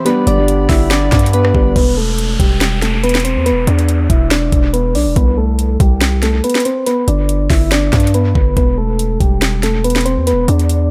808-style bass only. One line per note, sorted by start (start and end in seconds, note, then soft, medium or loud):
0.27 0.68 G1 loud
0.69 1.10 G1 loud
1.12 1.53 G2 loud
1.55 1.75 G1 loud
1.76 2.37 E1 loud
2.40 3.38 E1 loud
3.36 3.53 E2 medium
3.52 3.67 E1 loud
3.67 4.08 E2 loud
4.10 4.51 E1 loud
4.52 4.97 E1 loud
4.95 5.08 B1 loud
5.06 5.16 E1 medium
5.16 5.78 C2 loud
5.80 6.41 C2 loud
7.08 7.49 G1 loud
7.50 7.91 G1 loud
7.93 8.34 G2 loud
8.35 8.56 G1 loud
8.57 9.18 E1 loud
9.20 10.18 E1 loud
10.17 10.34 E2 loud
10.33 10.47 E1 loud
10.48 10.89 E2 loud